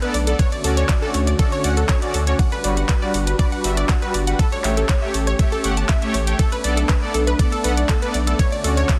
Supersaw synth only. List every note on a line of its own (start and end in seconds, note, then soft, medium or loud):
0.02 0.14 B3 medium
0.02 0.14 A4 medium
0.02 0.14 D5 medium
0.27 0.35 B3 medium
0.27 0.35 A4 medium
0.27 0.35 D5 medium
0.64 0.77 C#4 medium
0.64 0.77 F#4 medium
0.64 0.77 D5 medium
1.02 1.10 C#4 medium
1.02 1.10 F#4 medium
1.02 1.10 D5 medium
1.39 1.47 C#4 medium
1.39 1.47 F#4 medium
1.39 1.47 D5 medium
1.64 1.72 C#4 loud
1.64 1.72 F#4 medium
1.64 1.72 F#5 loud
2.02 2.14 C#4 medium
2.02 2.14 F#4 medium
2.02 2.14 D5 medium
2.27 2.34 C#4 medium
2.27 2.34 F#4 medium
2.27 2.34 D5 medium
2.64 2.77 G3 medium
2.64 2.77 F#4 medium
2.64 2.77 B4 medium
3.02 3.09 G3 medium
3.02 3.09 F#4 medium
3.02 3.09 B4 medium
3.39 3.47 G3 medium
3.39 3.47 F#4 medium
3.39 3.47 B4 medium
3.64 3.72 G3 loud
3.64 3.72 F#4 medium
3.64 3.72 E5 loud
4.02 4.14 G3 medium
4.02 4.14 F#4 medium
4.02 4.14 B4 medium
4.27 4.34 G3 medium
4.27 4.34 F#4 medium
4.27 4.34 B4 medium
4.64 4.77 A3 medium
4.64 4.77 G4 medium
4.64 4.77 C#5 medium
5.02 5.09 A3 medium
5.02 5.09 G4 medium
5.02 5.09 C#5 loud
5.39 5.47 A3 medium
5.39 5.47 G4 medium
5.39 5.47 C#5 medium
5.64 5.72 A3 loud
5.64 5.72 G4 medium
5.64 5.72 F#5 loud
6.02 6.14 A3 medium
6.02 6.14 G4 medium
6.02 6.14 C#5 loud
6.27 6.34 A3 medium
6.27 6.34 G4 medium
6.27 6.35 C#5 medium
6.64 6.77 B3 medium
6.64 6.77 A4 medium
6.64 6.77 D5 medium
7.02 7.09 B3 medium
7.02 7.10 A4 medium
7.02 7.09 D5 medium
7.39 7.47 B3 medium
7.39 7.47 A4 medium
7.39 7.47 D5 medium
7.64 7.72 B3 loud
7.64 7.72 A4 medium
7.64 7.72 F#5 loud
8.02 8.14 B3 medium
8.02 8.14 A4 medium
8.02 8.14 D5 loud
8.27 8.35 B3 medium
8.27 8.35 A4 medium
8.27 8.35 D5 medium
8.64 8.77 C#4 medium
8.64 8.77 F#4 medium
8.64 8.77 D5 medium